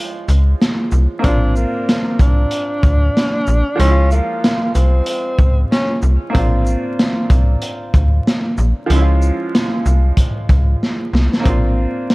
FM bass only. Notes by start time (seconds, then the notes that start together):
0.28 C#2
0.92 C2
1.24 A#1
2.19 C2
2.83 D2
3.48 A#1
3.79 C#2
4.75 C2
5.39 C#2
6.03 C2
6.35 A#1
7.30 C2
7.94 D2
8.58 A#1
8.90 C#2
9.86 C2
10.49 C#2
11.13 C2
11.45 A#1